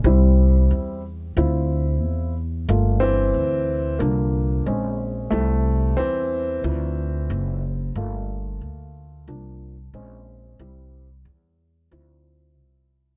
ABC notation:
X:1
M:4/4
L:1/8
Q:"Swing 16ths" 1/4=91
K:Gdor
V:1 name="Upright piano"
[G,CE]3 z [CEF]3 z | [A,B,F] z3 [F,D]2 [_A,C_D]2 | [G,CE]4 [F,CE]4 | [A,B,F]4 [F,B,D] z [_A,C_D]2 |
[G,CE] z3 [F,CE]4 |]
V:2 name="Upright piano" clef=bass
z8 | z [E,C]3 [D,B,]3 z | [C,A,]2 [E,C]4- [E,C] z | z8 |
z8 |]
V:3 name="Upright bass" clef=bass
C,,2 E,,2 D,,2 E,,2 | G,,,2 D,,2 C,,2 B,,,2 | C,,2 E,,2 D,,2 ^F,,,2 | G,,,2 D,,2 C,,2 B,,,2 |
C,,2 E,,2 D,,2 C,,2 |]